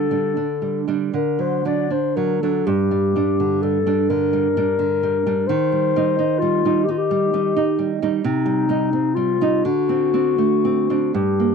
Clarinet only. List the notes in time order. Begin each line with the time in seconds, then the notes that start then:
Already playing: A4
1.15 A#4
1.41 C5
1.66 D5
1.92 C5
2.16 A#4
2.42 A4
2.66 G4
3.62 A4
4.09 A#4
5.47 C5
6.39 F4
6.84 G4
6.91 F4
6.98 G4
8.21 D#4
9.14 F4
9.64 F#4
11.14 G4